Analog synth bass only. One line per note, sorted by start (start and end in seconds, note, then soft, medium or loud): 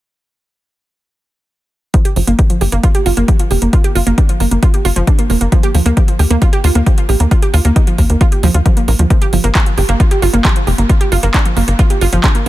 2.16 2.23 G1 medium
2.27 2.34 G1 medium
2.61 2.68 G1 medium
2.72 2.79 G1 medium
3.06 3.13 G1 medium
3.17 3.24 G1 medium
3.51 3.58 F1 loud
3.62 3.69 G1 medium
3.95 4.02 G1 medium
4.07 4.14 G1 medium
4.40 4.47 G1 medium
4.51 4.58 G1 medium
4.85 4.92 G1 loud
4.96 5.03 G1 medium
5.30 5.37 F1 loud
5.41 5.48 G1 medium
5.75 5.81 D#2 loud
5.86 5.93 D#2 medium
6.19 6.26 D#2 medium
6.30 6.37 D#2 medium
6.64 6.71 D#2 loud
6.75 6.82 D#2 medium
7.09 7.16 A#1 medium
7.20 7.27 D#2 medium
7.54 7.60 D#2 loud
7.65 7.72 D#2 medium
7.98 8.05 D#2 medium
8.10 8.16 D#2 medium
8.43 8.50 D#2 loud
8.54 8.61 D#2 medium
8.88 8.95 A#1 loud
8.99 9.06 D#2 medium
9.33 9.40 G1 medium
9.44 9.51 G1 medium
9.78 9.84 G1 medium
9.89 9.96 G1 medium
10.22 10.29 G1 loud
10.34 10.40 G1 medium
10.67 10.74 F1 loud
10.78 10.85 G1 medium
11.12 11.19 G1 medium
11.23 11.30 G1 medium
11.57 11.63 G1 medium
11.68 11.75 G1 medium
12.01 12.08 G1 loud
12.13 12.19 G1 medium